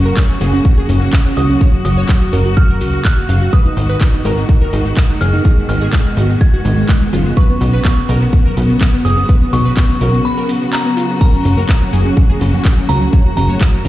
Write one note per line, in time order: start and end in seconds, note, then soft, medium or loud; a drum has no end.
0.00 0.13 F#1 loud
0.00 3.49 C#3 medium
0.00 3.49 F#3 medium
0.00 3.49 A#3 medium
0.00 7.33 F#4 loud
0.00 0.32 C#6 loud
0.06 0.14 A#4 medium
0.06 shaker soft
0.17 kick loud
0.17 clap loud
0.17 shaker soft
0.30 0.38 C#4 medium
0.41 0.61 F#1 loud
0.41 0.51 G#4 loud
0.41 open hi-hat loud
0.41 shaker medium
0.54 0.62 C#4 medium
0.54 shaker soft
0.65 0.75 C#4 medium
0.65 kick loud
0.65 shaker soft
0.77 0.86 G#4 loud
0.89 1.09 F#1 loud
0.89 0.99 C#4 medium
0.89 open hi-hat loud
0.89 shaker medium
1.01 1.10 C#4 medium
1.01 shaker soft
1.13 kick loud
1.13 clap loud
1.13 shaker soft
1.25 1.34 C#4 medium
1.37 1.57 C#2 medium
1.37 1.47 F#4 medium
1.37 1.80 D#6 medium
1.37 open hi-hat loud
1.37 shaker medium
1.50 1.58 C#4 medium
1.50 shaker soft
1.61 1.71 C#5 loud
1.61 kick loud
1.61 shaker soft
1.73 1.82 F#4 medium
1.85 2.05 F#1 loud
1.85 1.95 F#4 medium
1.85 2.48 D#6 loud
1.85 open hi-hat loud
1.85 shaker medium
1.97 2.06 C#5 medium
1.97 shaker soft
2.09 2.19 F#4 medium
2.09 kick loud
2.09 clap loud
2.09 shaker soft
2.22 2.30 F#4 medium
2.33 2.82 F#1 loud
2.33 2.43 A#4 loud
2.33 open hi-hat loud
2.33 shaker medium
2.46 2.54 F#4 medium
2.46 shaker soft
2.57 2.67 F#4 medium
2.57 3.00 F6 medium
2.57 kick loud
2.57 shaker soft
2.69 2.78 A#4 loud
2.81 3.01 C#2 medium
2.81 2.91 F#4 medium
2.81 open hi-hat loud
2.81 shaker medium
2.94 3.02 F#4 medium
2.94 shaker soft
3.05 3.48 F#6 medium
3.05 kick loud
3.05 clap loud
3.05 shaker soft
3.18 3.26 F#4 medium
3.29 3.49 F#1 medium
3.29 3.39 F5 medium
3.29 open hi-hat loud
3.29 shaker medium
3.41 3.50 F#4 medium
3.41 shaker soft
3.53 7.33 D#3 medium
3.53 7.33 G#3 medium
3.53 11.17 B3 medium
3.53 3.63 B4 loud
3.53 4.16 D#6 loud
3.53 kick loud
3.53 shaker soft
3.65 3.74 D#4 medium
3.77 3.97 G#1 loud
3.77 3.87 D#4 medium
3.77 open hi-hat loud
3.77 shaker medium
3.89 3.98 B4 medium
3.89 shaker soft
4.01 4.11 D#4 medium
4.01 kick loud
4.01 clap loud
4.01 shaker soft
4.13 4.22 D#4 medium
4.25 4.45 G#1 loud
4.25 4.35 A#4 loud
4.25 open hi-hat medium
4.25 shaker medium
4.37 4.46 D#4 medium
4.37 shaker soft
4.49 4.59 D#4 medium
4.49 kick loud
4.49 shaker soft
4.61 4.70 A#4 loud
4.73 4.93 G#1 loud
4.73 4.83 D#4 medium
4.73 open hi-hat loud
4.73 shaker medium
4.85 4.94 D#4 medium
4.85 shaker soft
4.97 kick loud
4.97 clap loud
4.97 shaker soft
5.09 5.18 D#4 medium
5.21 5.41 F#1 medium
5.21 5.31 G#4 medium
5.21 5.64 F6 medium
5.21 open hi-hat medium
5.21 shaker medium
5.33 5.42 D#4 medium
5.33 shaker soft
5.45 5.55 G#4 loud
5.45 kick loud
5.45 shaker soft
5.57 5.66 G#3 medium
5.69 5.89 G#1 loud
5.69 5.79 G#3 medium
5.69 6.32 F6 loud
5.69 open hi-hat loud
5.69 shaker medium
5.81 5.90 G#4 loud
5.81 shaker soft
5.93 6.03 G#3 medium
5.93 kick loud
5.93 clap loud
5.93 shaker soft
6.05 6.14 G#3 medium
6.17 6.37 G#1 loud
6.17 6.27 F#4 loud
6.17 open hi-hat medium
6.17 shaker medium
6.29 6.38 G#3 medium
6.29 shaker soft
6.41 6.51 G#3 medium
6.41 6.84 G#6 medium
6.41 kick loud
6.41 shaker soft
6.53 6.62 F#4 loud
6.65 6.85 G#1 loud
6.65 6.75 G#3 medium
6.65 open hi-hat loud
6.65 shaker medium
6.77 6.86 G#3 medium
6.77 shaker soft
6.89 7.32 F#6 medium
6.89 kick loud
6.89 clap loud
6.89 shaker soft
7.01 7.10 G#3 medium
7.13 7.33 F#1 medium
7.13 7.23 F4 medium
7.13 open hi-hat medium
7.13 shaker medium
7.25 7.34 G#3 medium
7.25 shaker soft
7.37 13.88 C#3 medium
7.37 13.88 F#3 medium
7.37 13.88 F#4 medium
7.37 7.47 B4 loud
7.37 8.00 C#6 loud
7.37 kick loud
7.37 shaker soft
7.49 7.58 B3 medium
7.61 7.81 B1 loud
7.61 7.71 B3 medium
7.61 open hi-hat loud
7.61 shaker medium
7.73 7.82 B4 medium
7.73 shaker soft
7.85 7.95 B3 medium
7.85 kick loud
7.85 clap loud
7.85 shaker soft
7.97 8.06 B3 medium
8.09 8.29 B1 loud
8.09 8.19 A#4 medium
8.09 open hi-hat medium
8.09 shaker medium
8.21 8.30 B3 medium
8.21 shaker soft
8.33 8.43 B3 medium
8.33 kick loud
8.33 shaker soft
8.45 8.54 A#4 medium
8.57 8.77 B1 loud
8.57 8.67 B3 medium
8.57 open hi-hat loud
8.57 shaker medium
8.69 8.78 B3 medium
8.69 shaker soft
8.81 kick loud
8.81 clap loud
8.81 shaker soft
8.93 9.02 B3 medium
9.05 9.25 F#1 medium
9.05 9.15 G#4 medium
9.05 9.48 D#6 medium
9.05 open hi-hat medium
9.05 shaker medium
9.18 9.26 B3 medium
9.18 shaker soft
9.29 9.39 B4 loud
9.29 kick loud
9.29 shaker soft
9.42 9.50 B3 medium
9.53 9.73 B1 loud
9.53 9.63 B3 medium
9.53 10.16 C#6 loud
9.53 open hi-hat loud
9.53 shaker medium
9.65 9.74 B4 medium
9.65 shaker soft
9.77 9.87 B3 medium
9.77 kick loud
9.77 clap loud
9.77 shaker soft
9.89 9.98 B3 medium
9.89 shaker soft
10.01 10.21 B1 loud
10.01 10.11 A#4 loud
10.01 open hi-hat medium
10.01 shaker medium
10.13 10.22 B3 medium
10.13 shaker soft
10.25 10.35 B3 medium
10.25 10.68 B5 medium
10.25 shaker soft
10.38 10.46 A#4 loud
10.38 shaker soft
10.49 10.59 B3 medium
10.49 open hi-hat loud
10.49 shaker medium
10.62 10.70 B3 medium
10.62 shaker soft
10.73 11.16 A#5 medium
10.73 clap loud
10.73 shaker soft
10.85 10.94 B3 medium
10.85 shaker soft
10.97 11.07 F4 medium
10.97 open hi-hat medium
10.97 shaker medium
11.09 11.18 B3 medium
11.09 shaker soft
11.21 13.88 A#3 medium
11.21 11.31 A#4 loud
11.21 11.84 A#5 loud
11.21 kick loud
11.21 crash medium
11.21 shaker soft
11.34 11.42 C#4 medium
11.45 11.65 F#1 loud
11.45 11.55 C#4 medium
11.45 open hi-hat loud
11.45 shaker medium
11.57 11.66 A#4 loud
11.57 high conga loud
11.57 shaker soft
11.69 11.79 C#4 medium
11.69 kick loud
11.69 clap loud
11.69 high woodblock medium
11.69 shaker soft
11.81 11.90 C#4 medium
11.93 12.13 F#1 loud
11.93 12.03 G#4 loud
11.93 open hi-hat medium
11.93 shaker medium
12.05 12.14 C#4 medium
12.05 shaker soft
12.17 12.27 C#4 medium
12.17 kick loud
12.17 shaker soft
12.29 12.38 G#4 loud
12.29 high conga medium
12.29 low conga medium
12.41 12.61 F#1 loud
12.41 12.51 C#4 medium
12.41 open hi-hat loud
12.41 high woodblock medium
12.41 shaker medium
12.53 12.62 C#4 medium
12.53 low conga medium
12.53 shaker soft
12.65 kick loud
12.65 clap loud
12.65 shaker soft
12.77 12.86 C#4 medium
12.89 13.09 C#2 medium
12.89 12.99 F#4 medium
12.89 13.32 A#5 medium
12.89 open hi-hat medium
12.89 high conga medium
12.89 shaker medium
13.01 13.10 C#4 medium
13.01 low conga loud
13.01 shaker soft
13.13 13.23 C#5 loud
13.13 kick loud
13.13 shaker soft
13.25 13.34 F#4 medium
13.37 13.57 F#1 loud
13.37 13.47 F#4 medium
13.37 13.88 A#5 medium
13.37 open hi-hat loud
13.37 low conga medium
13.37 shaker medium
13.49 13.58 C#5 loud
13.49 high conga loud
13.49 shaker soft
13.61 13.71 F#4 medium
13.61 kick loud
13.61 clap loud
13.61 high woodblock medium
13.61 shaker soft
13.73 13.82 F#4 medium
13.85 13.88 F#1 loud
13.85 13.88 A#4 loud
13.85 open hi-hat loud